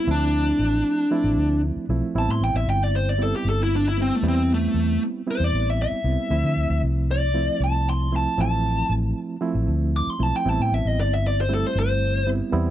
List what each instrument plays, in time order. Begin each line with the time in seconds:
0.07 fingered electric bass D2, reed electric piano F3 A3 C4 E4, lead electric guitar D4
0.59 fingered electric bass A1
1.11 reed electric piano F3 A3 C4 E4
1.24 fingered electric bass A1
1.37 fingered electric bass D2
1.76 muted fingered electric bass stroke
1.89 fingered electric bass B1, reed electric piano F3 A3 C4 E4
2.15 fingered electric bass A1, reed electric piano G3 B3 C4 E4, lead electric guitar A5
2.28 fingered electric bass A2, lead electric guitar C6
2.41 fingered electric bass A1, lead electric guitar G5
2.54 fingered electric bass A1, lead electric guitar E5
2.66 fingered electric bass G1, lead electric guitar G5
2.84 lead electric guitar D5
2.96 lead electric guitar C5
3.09 lead electric guitar D5
3.18 reed electric piano G3 B3 C4 E4
3.23 lead electric guitar A4
3.36 lead electric guitar G4
3.45 fingered electric bass G1
3.49 lead electric guitar A4
3.63 lead electric guitar E4
3.76 lead electric guitar D4
3.89 lead electric guitar E4
3.97 reed electric piano G3 B3 C4 E4
4.02 lead electric guitar C4
4.15 lead electric guitar A3
4.23 fingered electric bass E2, reed electric piano G3 B3 C4 E4
4.28 lead electric guitar C4
4.54 lead electric guitar A3
4.74 fingered electric bass E2
5.27 reed electric piano G3 B3 C4 E4, lead electric guitar C5
5.40 fingered electric bass E2
5.44 lead electric guitar D5
5.53 fingered electric bass A1
5.70 lead electric guitar E5
5.82 lead electric guitar E5
5.92 muted fingered electric bass stroke
6.04 fingered electric bass C2, reed electric piano G3 B3 C4 E4
6.30 fingered electric bass D2, reed electric piano F3 A3 C4 E4
6.44 fingered electric bass D3
6.57 fingered electric bass D2
6.70 fingered electric bass D2
6.83 fingered electric bass C2
7.11 lead electric guitar D5
7.34 reed electric piano F3 A3 C4 E4
7.60 fingered electric bass C2, lead electric guitar A5
7.90 lead electric guitar C6
8.12 reed electric piano F3 A3 C4 E4
8.16 lead electric guitar A5
8.38 fingered electric bass A1, reed electric piano F3 A3 C4 E4, lead electric guitar A5
8.89 fingered electric bass A1
9.41 reed electric piano F3 A3 C4 E4
9.55 fingered electric bass A1
9.68 fingered electric bass D2
9.96 lead electric guitar D6
10.07 lead electric guitar C6, muted fingered electric bass stroke
10.19 fingered electric bass B1, reed electric piano F3 A3 C4 E4, lead electric guitar A5
10.36 lead electric guitar G5
10.45 fingered electric bass A1, reed electric piano G3 B3 C4 E4
10.49 lead electric guitar A5
10.59 fingered electric bass A2, lead electric guitar G5
10.72 fingered electric bass A1, lead electric guitar E5
10.85 fingered electric bass A1, lead electric guitar D#5
10.98 fingered electric bass G1, lead electric guitar D5
11.14 lead electric guitar E5
11.27 lead electric guitar D5
11.41 lead electric guitar C5
11.49 reed electric piano G3 A3 C4 E4
11.54 lead electric guitar A4
11.67 lead electric guitar C5
11.75 fingered electric bass G1
11.80 lead electric guitar C5
12.26 reed electric piano G3 B3 C4 E4
12.52 fingered electric bass E2, reed electric piano G3 B3 C4 E4